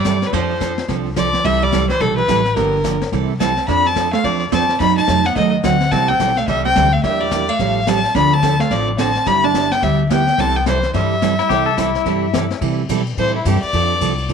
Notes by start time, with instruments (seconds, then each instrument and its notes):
Already playing: upright bass G2, hollow-body jazz guitar G3, fiddle D5
0.05 steel-string acoustic guitar C3 E3 G3 C4 E4 A4, kick, snare, hi-hat pedal
0.22 snare
0.27 hollow-body jazz guitar D3, fiddle B4
0.33 upright bass F2, steel-string acoustic guitar F3 C4 D4 A4, hollow-body jazz guitar F3, fiddle C5, brush sweep, kick, snare
0.60 steel-string acoustic guitar F3 C4 D4 A4, kick, snare, hi-hat pedal
0.78 snare
0.88 upright bass C2, steel-string acoustic guitar F3 C4 D4 A4, brush sweep, kick, snare
1.16 steel-string acoustic guitar F3 C4 D4 A4, hollow-body jazz guitar F3, fiddle D5, kick, snare, hi-hat pedal
1.34 snare
1.44 upright bass C2, steel-string acoustic guitar C3 E3 G3 C4 E4 A4, hollow-body jazz guitar G3, fiddle E5, brush sweep, kick, snare
1.62 hollow-body jazz guitar G3, fiddle D5
1.72 steel-string acoustic guitar C3 E3 G3 C4 E4 A4, kick, snare, hi-hat pedal
1.89 hollow-body jazz guitar E3, fiddle C5, snare
2.00 upright bass B1, steel-string acoustic guitar C3 E3 G3 C4 E4 A4, hollow-body jazz guitar C3, fiddle A4, brush sweep, kick, snare
2.17 hollow-body jazz guitar E3, fiddle B4
2.28 upright bass A1, steel-string acoustic guitar C3 E3 G3 C4 E4 A4, kick, snare, hi-hat pedal
2.45 snare
2.56 upright bass G1, hollow-body jazz guitar D3, steel-string acoustic guitar D3 F3 A#3 D4 G4, fiddle A#4, brush sweep, kick, snare
2.84 steel-string acoustic guitar D3 F3 A#3 D4 G4, kick, snare, hi-hat pedal
3.01 snare
3.12 upright bass C2, steel-string acoustic guitar C3 E3 G3 C4 E4 A4, brush sweep, kick, snare
3.40 steel-string acoustic guitar C3 E3 G3 C4 E4 A4, hollow-body jazz guitar C4, fiddle A5, kick, snare, hi-hat pedal
3.57 snare
3.68 upright bass F2, steel-string acoustic guitar F3 C4 D4 A4, hollow-body jazz guitar D4, fiddle B5, brush sweep, kick, snare
3.85 hollow-body jazz guitar C4, fiddle A5
3.96 steel-string acoustic guitar F3 C4 D4 A4, kick, snare, hi-hat pedal
4.13 hollow-body jazz guitar A3, fiddle F5, snare
4.24 upright bass E2, steel-string acoustic guitar F3 C4 D4 A4, hollow-body jazz guitar F3, fiddle D5, brush sweep, kick, snare
4.52 upright bass F2, steel-string acoustic guitar F3 C4 D4 A4, hollow-body jazz guitar C4, fiddle A5, kick, snare, hi-hat pedal
4.69 snare
4.80 upright bass F#2, steel-string acoustic guitar C3 F#3 A3 D#4 F#4, hollow-body jazz guitar D#4, fiddle B5, brush sweep, kick, snare
4.98 hollow-body jazz guitar D#4, fiddle A5
5.08 upright bass F2, steel-string acoustic guitar C3 F#3 A3 D#4 F#4, kick, snare, hi-hat pedal
5.25 hollow-body jazz guitar B3, fiddle F#5, snare
5.36 upright bass D#2, steel-string acoustic guitar C3 F#3 A3 D#4 F#4, hollow-body jazz guitar A3, fiddle D#5, brush sweep, kick, snare
5.63 upright bass D2, steel-string acoustic guitar C3 F#3 A3 D#4 F#4, hollow-body jazz guitar C4, fiddle F#5, kick, snare, hi-hat pedal
5.81 snare
5.92 upright bass C2, steel-string acoustic guitar C3 E3 G3 C4 E4 A4, hollow-body jazz guitar C4, fiddle A5, brush sweep, kick, snare
6.08 hollow-body jazz guitar C4, fiddle G5
6.20 upright bass B1, steel-string acoustic guitar C3 E3 G3 C4 E4 A4, kick, snare, hi-hat pedal
6.37 hollow-body jazz guitar A3, fiddle F5, snare
6.48 upright bass C2, steel-string acoustic guitar C3 E3 G3 C4 E4 A4, hollow-body jazz guitar G3, fiddle E5, brush sweep, kick, snare
6.65 hollow-body jazz guitar C4, fiddle G5
6.76 upright bass D2, steel-string acoustic guitar C3 E3 G3 C4 E4 A4, kick, snare, hi-hat pedal
6.92 hollow-body jazz guitar A3, fiddle F5
7.03 upright bass E2, steel-string acoustic guitar E3 A#3 D4 G4, hollow-body jazz guitar G3, fiddle E5, brush sweep, kick, snare
7.21 hollow-body jazz guitar G3, fiddle D5
7.31 steel-string acoustic guitar E3 A#3 D4 G4, kick, snare, hi-hat pedal
7.49 hollow-body jazz guitar A3, fiddle F5
7.59 upright bass A1, steel-string acoustic guitar F3 G3 C#4 G4 A4, brush sweep, kick, snare
7.87 steel-string acoustic guitar F3 G3 C#4 G4 A4, hollow-body jazz guitar C4, fiddle A5, kick, snare, hi-hat pedal
8.04 snare
8.14 upright bass D2, steel-string acoustic guitar D3 F3 C4 D4 A4, hollow-body jazz guitar D4, fiddle B5, brush sweep, kick, snare
8.32 hollow-body jazz guitar C4, fiddle A5
8.42 steel-string acoustic guitar D3 F3 C4 D4 A4, kick, snare, hi-hat pedal
8.60 hollow-body jazz guitar A3, fiddle F5, snare
8.70 upright bass A1, steel-string acoustic guitar D3 F3 C4 D4 A4, hollow-body jazz guitar F3, fiddle D5, brush sweep, kick, snare
8.98 steel-string acoustic guitar D3 F3 C4 D4 A4, hollow-body jazz guitar C4, fiddle A5, kick, snare, hi-hat pedal
9.15 snare
9.26 upright bass G1, steel-string acoustic guitar G3 B3 E4 G4, hollow-body jazz guitar D4, fiddle B5, brush sweep, kick, snare
9.44 hollow-body jazz guitar D4, fiddle A5
9.54 steel-string acoustic guitar G3 B3 E4 G4, kick, snare, hi-hat pedal
9.71 hollow-body jazz guitar B3, fiddle G5, snare
9.82 upright bass D2, steel-string acoustic guitar G3 B3 E4 G4, hollow-body jazz guitar G3, fiddle E5, brush sweep, kick, snare
10.10 steel-string acoustic guitar G3 B3 E4 G4, hollow-body jazz guitar B3, fiddle G5, kick, snare, hi-hat pedal
10.27 snare
10.38 upright bass C2, steel-string acoustic guitar C3 E3 G3 C4 E4 A4, hollow-body jazz guitar C4, fiddle A5, brush sweep, kick, snare
10.56 hollow-body jazz guitar B3, fiddle G5
10.66 steel-string acoustic guitar C3 E3 G3 C4 E4 A4, hollow-body jazz guitar E3, fiddle C5, kick, snare, hi-hat pedal
10.83 snare
10.94 upright bass G2, steel-string acoustic guitar C3 E3 G3 C4 E4 A4, hollow-body jazz guitar G3, fiddle E5, brush sweep, kick, snare
11.22 steel-string acoustic guitar C3 E3 G3 C4 E4 A4, kick, snare, hi-hat pedal
11.39 pedal steel guitar E4, snare
11.49 upright bass C2, steel-string acoustic guitar C3 E3 G3 C4 E4 A4, pedal steel guitar G4, brush sweep, kick, snare
11.66 pedal steel guitar A4
11.77 steel-string acoustic guitar C3 E3 G3 C4 E4 A4, pedal steel guitar E4, kick, snare, hi-hat pedal
11.95 snare
12.06 upright bass G2, steel-string acoustic guitar C3 E3 G3 C4 E4 A4, brush sweep, kick, snare
12.33 steel-string acoustic guitar C3 E3 G3 C4 E4 A4, kick, snare, hi-hat pedal
12.51 snare
12.61 upright bass C3, steel-string acoustic guitar C3 E3 G3 C4 E4 A4, kick, ride
12.89 upright bass B2, steel-string acoustic guitar C3 E3 G3 C4 E4 A4, kick, hi-hat pedal, ride
13.06 ride
13.17 upright bass A2, steel-string acoustic guitar C3 E3 G3 C4 E4 A4, fiddle C5, kick, ride
13.36 fiddle E4
13.45 upright bass G2, steel-string acoustic guitar C3 E3 G3 C4 E4 A4, fiddle G4, kick, hi-hat pedal, ride
13.62 fiddle D5, muted upright bass stroke, ride
13.73 upright bass F2, steel-string acoustic guitar F3 C4 D4 A4, kick, ride
14.01 upright bass C2, steel-string acoustic guitar F3 C4 D4 A4, kick, hi-hat pedal, ride
14.18 ride
14.29 upright bass D2, steel-string acoustic guitar F3 C4, kick, ride